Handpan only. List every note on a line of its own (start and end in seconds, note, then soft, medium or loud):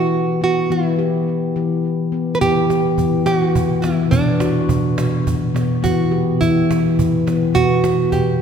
0.41 0.69 B3 medium
0.70 1.45 E3 medium
0.70 0.98 B3 medium
0.99 1.55 G4 medium
1.56 1.81 E3 medium
2.12 2.40 B3 medium
2.41 2.91 E3 medium
2.41 2.69 B3 medium
2.70 3.27 G4 medium
2.98 3.23 E3 medium
3.26 3.76 E3 medium
3.83 4.08 E3 medium
3.83 4.11 B3 medium
4.12 4.62 B2 medium
4.12 4.41 B3 medium
4.41 4.98 F#4 medium
4.69 4.94 B2 medium
4.97 5.48 B2 medium
5.54 5.80 B2 medium
5.54 5.81 B3 medium
5.83 6.34 E3 medium
5.83 6.12 B3 medium
6.11 6.69 G4 medium
6.41 6.66 E3 medium
6.69 7.20 E3 medium
7.27 7.52 E3 medium
7.27 7.54 B3 medium
7.54 8.05 B2 medium
7.54 7.84 B3 medium
7.84 8.41 F#4 medium
8.12 8.38 B2 medium